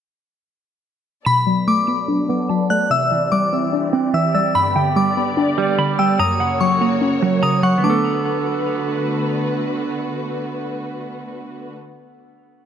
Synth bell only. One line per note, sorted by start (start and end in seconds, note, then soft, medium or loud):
1.26 1.65 B5 loud
1.68 2.66 D6 medium
2.70 2.90 F#6 medium
2.91 3.29 E6 loud
3.32 3.70 D6 medium
4.14 4.33 E6 medium
4.35 4.54 E6 medium
4.55 4.94 B5 medium
4.96 5.95 D6 medium
5.99 6.18 E6 medium
6.19 6.58 D#6 loud
6.61 6.99 C#6 medium
7.43 7.62 D#6 medium
7.63 7.83 C#6 medium
7.84 9.03 D6 medium